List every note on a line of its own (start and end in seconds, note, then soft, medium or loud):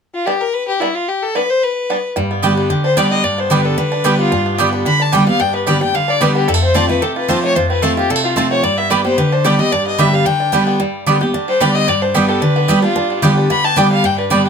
0.14 0.27 F4 medium
0.26 0.33 G3 medium
0.26 0.33 B3 medium
0.26 0.33 D4 medium
0.26 0.43 G4 medium
0.41 0.55 A#4 medium
0.53 0.67 B4 loud
0.68 0.82 G4 medium
0.80 0.87 G3 medium
0.80 0.87 B3 medium
0.80 0.87 D4 medium
0.80 0.97 E4 medium
0.95 1.10 F4 medium
1.08 1.24 G4 medium
1.23 1.37 A4 medium
1.35 1.41 G3 medium
1.35 1.41 B3 medium
1.35 1.42 D4 medium
1.35 1.51 B4 medium
1.50 1.64 C5 loud
1.63 2.10 B4 medium
1.90 1.96 G3 medium
1.90 1.96 B3 medium
1.90 1.96 D4 medium
2.16 2.68 G2 medium
2.16 2.57 G3 medium
2.31 3.38 B3 soft
2.43 2.69 D3 medium
2.43 2.69 G3 medium
2.43 2.52 B3 medium
2.43 2.69 B3 medium
2.43 2.52 G4 medium
2.43 2.69 G4 medium
2.43 2.70 G4 medium
2.43 2.52 D5 medium
2.43 2.52 G5 loud
2.57 3.11 G3 medium
2.70 2.96 D3 medium
2.70 2.97 G4 medium
2.84 3.24 D4 medium
2.84 2.99 C5 loud
2.97 3.23 D3 loud
2.97 3.23 G3 loud
2.97 3.06 B3 medium
2.97 3.23 B3 medium
2.97 3.06 G4 medium
2.97 4.37 G4 medium
2.97 3.24 G4 loud
2.97 3.06 D5 medium
2.97 3.13 D5 medium
2.97 3.06 G5 medium
3.11 3.50 G3 medium
3.11 3.25 D#5 loud
3.24 3.75 G2 medium
3.24 3.65 D4 medium
3.24 3.41 D5 medium
3.38 4.19 B3 medium
3.38 3.53 C5 medium
3.50 3.76 D3 medium
3.50 3.78 G3 medium
3.50 3.77 G3 medium
3.50 3.60 B3 medium
3.50 3.77 B3 medium
3.50 3.60 G4 medium
3.50 3.77 G4 medium
3.50 3.67 B4 medium
3.50 3.60 D5 medium
3.50 3.60 G5 medium
3.65 3.91 D4 medium
3.65 3.79 A4 medium
3.78 4.03 D3 medium
3.78 4.04 G3 medium
3.78 4.19 B4 medium
3.92 4.31 D4 medium
4.04 4.30 D3 loud
4.04 4.58 G3 medium
4.04 4.31 G3 loud
4.04 4.14 B3 medium
4.04 4.31 B3 loud
4.04 4.14 G4 medium
4.04 4.31 G4 loud
4.04 4.14 D5 medium
4.04 4.14 G5 medium
4.19 4.45 B3 medium
4.19 4.56 F4 loud
4.32 4.83 G2 medium
4.32 4.70 D4 medium
4.46 4.83 B3 medium
4.58 4.84 D3 medium
4.58 4.84 G3 medium
4.58 4.85 G3 medium
4.58 4.68 B3 medium
4.58 4.85 B3 medium
4.58 4.68 G4 medium
4.58 4.86 G4 medium
4.58 4.69 D5 medium
4.58 4.69 G5 medium
4.73 4.99 D4 medium
4.85 5.11 D3 medium
4.85 5.11 G3 medium
4.85 5.03 B5 medium
5.00 5.37 D4 medium
5.00 5.16 A5 loud
5.12 5.27 D3 medium
5.12 5.51 G3 medium
5.12 5.27 G3 loud
5.12 5.22 B3 medium
5.12 5.27 B3 loud
5.12 5.22 G4 medium
5.12 5.26 G4 loud
5.12 5.22 D5 medium
5.12 5.23 G5 loud
5.12 5.27 G5 medium
5.27 5.53 B3 medium
5.27 5.40 B3 soft
5.27 5.39 G4 medium
5.27 5.42 F5 loud
5.40 5.91 G2 medium
5.40 5.78 D4 medium
5.40 5.54 G5 loud
5.54 5.91 B3 medium
5.54 5.69 B4 medium
5.66 5.81 D3 medium
5.66 5.93 G3 medium
5.66 5.81 G3 medium
5.66 5.76 B3 medium
5.66 5.81 B3 medium
5.66 5.76 G4 medium
5.66 5.80 G4 loud
5.66 5.77 D5 medium
5.66 5.82 D5 medium
5.66 5.77 G5 medium
5.81 5.94 B3 soft
5.81 6.07 D4 medium
5.81 5.93 G4 medium
5.81 5.96 G5 loud
5.94 6.20 D3 medium
5.94 6.19 G3 medium
5.94 6.11 F5 medium
6.08 6.45 D4 medium
6.08 6.23 D5 loud
6.21 6.47 D3 medium
6.21 6.47 G3 medium
6.21 6.47 G3 loud
6.21 6.30 B3 medium
6.21 6.47 B3 loud
6.21 6.31 G4 medium
6.21 6.48 G4 loud
6.21 6.35 B4 medium
6.21 6.31 D5 medium
6.21 6.31 G5 medium
6.35 6.48 B3 medium
6.35 6.49 G4 medium
6.48 7.00 F2 medium
6.48 6.54 G3 medium
6.48 6.62 A4 medium
6.54 6.75 A3 medium
6.62 6.99 C4 medium
6.62 6.77 C5 medium
6.74 6.88 F3 medium
6.74 6.89 A3 medium
6.74 6.84 C4 medium
6.74 6.89 C4 medium
6.74 6.84 F4 medium
6.74 6.88 F4 medium
6.74 7.01 G4 medium
6.74 6.85 C5 medium
6.74 6.89 D5 medium
6.74 6.85 A5 medium
6.89 7.26 A3 medium
6.89 7.03 C4 soft
6.89 7.02 F4 medium
6.89 7.03 B4 medium
7.02 7.53 C3 medium
7.02 7.28 G4 medium
7.02 7.16 A4 medium
7.16 7.53 F4 medium
7.16 7.30 B4 medium
7.28 7.54 F3 loud
7.28 7.55 A3 loud
7.28 7.38 C4 medium
7.28 7.55 C4 medium
7.28 7.38 F4 medium
7.28 7.56 F4 loud
7.28 7.67 G4 medium
7.28 7.42 C5 medium
7.28 7.38 C5 medium
7.28 7.39 A5 medium
7.43 7.81 A3 medium
7.43 7.57 C#5 loud
7.55 8.08 F2 medium
7.55 7.94 F4 medium
7.55 7.69 C5 medium
7.70 8.07 C4 medium
7.70 7.83 B4 medium
7.82 7.96 F3 medium
7.82 8.09 A3 medium
7.82 7.97 A3 medium
7.82 7.92 C4 medium
7.82 7.97 C4 medium
7.82 7.92 F4 medium
7.82 7.96 F4 medium
7.82 7.96 A4 medium
7.82 7.92 C5 medium
7.82 7.93 A5 medium
7.97 8.10 C4 medium
7.97 8.09 F4 medium
7.97 8.23 F4 medium
7.97 8.12 G4 medium
8.10 8.61 C3 medium
8.10 8.16 G3 medium
8.10 8.24 A4 medium
8.16 8.35 A3 medium
8.24 8.61 F4 medium
8.24 8.32 F4 medium
8.36 8.62 F3 medium
8.36 8.63 A3 medium
8.36 8.46 C4 medium
8.36 8.63 C4 medium
8.36 8.46 F4 medium
8.36 8.63 F4 loud
8.36 8.46 C5 medium
8.36 8.47 A5 medium
8.51 8.64 C4 medium
8.51 8.65 C#5 loud
8.63 9.15 G2 medium
8.63 9.04 G3 medium
8.63 8.79 D5 medium
8.78 9.86 B3 medium
8.78 8.91 E5 loud
8.90 9.04 D3 medium
8.90 9.05 G3 medium
8.90 9.00 B3 loud
8.90 9.05 B3 loud
8.90 9.17 G4 medium
8.90 9.00 G4 medium
8.90 9.03 G4 medium
8.90 9.04 D5 medium
8.90 9.00 D5 medium
8.90 9.01 G5 medium
9.04 9.59 G3 medium
9.04 9.18 B3 soft
9.04 9.17 G4 medium
9.04 9.19 C5 loud
9.18 9.43 D3 medium
9.18 9.44 G4 medium
9.18 9.34 B4 medium
9.32 9.72 D4 medium
9.32 9.47 C5 medium
9.44 9.58 D3 medium
9.44 9.59 G3 loud
9.44 9.54 B3 medium
9.44 9.59 B3 loud
9.44 9.54 G4 medium
9.44 9.83 G4 medium
9.44 9.58 G4 loud
9.44 9.55 D5 medium
9.44 9.61 D5 medium
9.44 9.55 G5 medium
9.59 9.96 G3 medium
9.59 9.72 B3 soft
9.59 9.71 G4 medium
9.59 9.74 D#5 loud
9.72 10.24 G2 medium
9.72 10.10 D4 medium
9.72 9.86 D5 medium
9.87 10.24 B3 medium
9.87 10.01 D#5 medium
9.98 10.24 D3 medium
9.98 10.25 G3 medium
9.98 10.24 G3 medium
9.98 10.08 B3 medium
9.98 10.25 B3 medium
9.98 10.08 G4 medium
9.98 10.25 G4 medium
9.98 10.08 D5 medium
9.98 10.16 E5 medium
9.98 10.09 G5 loud
10.13 10.39 D4 medium
10.13 10.27 F5 medium
10.25 10.51 D3 medium
10.25 10.52 G3 medium
10.25 10.73 G5 medium
10.40 10.77 D4 medium
10.52 10.78 D3 medium
10.52 10.79 G3 medium
10.52 10.62 B3 medium
10.52 10.79 B3 loud
10.52 10.62 G4 medium
10.52 10.79 G4 loud
10.52 10.63 D5 medium
10.52 10.63 G5 medium
10.67 10.80 B3 medium
10.80 11.31 G2 medium
10.80 11.07 G3 medium
11.06 11.20 D3 medium
11.06 11.48 G3 medium
11.06 11.21 G3 medium
11.06 11.16 B3 medium
11.06 11.21 B3 medium
11.06 11.16 G4 medium
11.06 11.19 G4 medium
11.06 11.17 D5 medium
11.06 11.17 G5 medium
11.21 11.34 B3 soft
11.21 11.33 G4 medium
11.21 11.60 G4 medium
11.34 11.59 D3 medium
11.34 12.02 D4 medium
11.48 11.75 G3 medium
11.48 11.62 C5 loud
11.60 11.86 D3 medium
11.60 11.87 G3 loud
11.60 11.70 B3 medium
11.60 11.87 B3 loud
11.60 12.28 G4 medium
11.60 11.70 G4 medium
11.60 11.87 G4 loud
11.60 11.76 D5 medium
11.60 11.70 D5 medium
11.60 11.70 G5 loud
11.75 11.87 G3 medium
11.75 11.90 D#5 loud
11.88 12.39 G2 medium
11.88 12.14 G3 medium
11.88 12.03 D5 medium
12.02 12.41 D4 medium
12.02 12.16 C5 medium
12.14 12.41 D3 medium
12.14 12.68 G3 medium
12.14 12.41 G3 medium
12.14 12.24 B3 medium
12.14 12.41 B3 loud
12.14 12.24 G4 medium
12.14 12.42 G4 loud
12.14 12.30 B4 medium
12.14 12.24 D5 medium
12.14 12.25 G5 medium
12.29 13.22 G4 medium
12.29 12.43 A4 medium
12.41 12.67 D3 medium
12.41 12.82 D4 medium
12.41 12.82 B4 medium
12.56 13.50 B3 medium
12.68 12.82 D3 medium
12.68 13.10 G3 medium
12.68 12.83 G3 loud
12.68 12.78 B3 medium
12.68 12.83 B3 loud
12.68 12.78 G4 medium
12.68 12.81 G4 loud
12.68 12.78 D5 medium
12.68 12.78 G5 loud
12.82 12.96 B3 medium
12.82 12.95 D4 medium
12.82 13.20 F4 medium
12.82 12.95 G4 medium
12.96 13.47 G2 medium
12.96 13.34 D4 medium
13.10 13.47 G3 medium
13.22 13.48 D3 medium
13.22 13.49 G3 medium
13.22 13.32 B3 medium
13.22 13.49 B3 medium
13.22 13.32 G4 loud
13.22 13.61 G4 medium
13.22 13.49 G4 loud
13.22 13.32 D5 medium
13.22 13.33 G5 loud
13.37 13.75 D4 medium
13.50 13.75 D3 medium
13.50 13.89 B3 medium
13.50 13.66 B5 medium
13.64 14.01 G4 medium
13.64 13.79 A5 loud
13.76 14.02 D3 loud
13.76 14.03 G3 loud
13.76 13.86 B3 medium
13.76 14.03 B3 medium
13.76 14.15 D4 medium
13.76 13.86 G4 medium
13.76 14.03 G4 loud
13.76 13.87 D5 loud
13.76 13.87 G5 loud
13.76 13.91 G5 medium
13.91 14.03 G3 medium
13.91 14.07 F5 loud
14.04 14.49 G2 medium
14.04 14.30 G3 medium
14.04 14.18 G5 loud
14.18 14.49 D4 medium
14.18 14.33 B4 medium
14.30 14.49 D3 medium
14.30 14.49 G3 loud
14.30 14.49 G3 medium
14.30 14.40 B3 medium
14.30 14.49 B3 loud
14.30 14.40 G4 medium
14.30 14.49 G4 loud
14.30 14.41 D5 medium
14.30 14.46 D5 medium
14.30 14.41 G5 medium
14.46 14.49 G4 medium
14.46 14.49 G5 loud